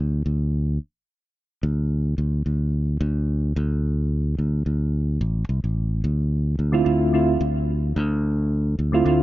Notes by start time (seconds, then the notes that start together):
0.00 D2
0.26 D2
1.63 D2
2.18 D2
2.46 D2
3.01 D2
3.56 D2
4.38 D2
4.66 D2
5.21 A1
5.49 C2
5.64 A1
6.04 D2
6.59 D2
6.72 D3 A3 C4 E4 F4
6.84 D2 D3 A3 C4 E4 F4
7.13 D3 A3 C4 E4 F4
7.41 D2
7.96 D2
8.79 D2
8.92 D3 A3 C4 E4 F4
9.05 D2 D3 A3 C4 E4
9.09 F4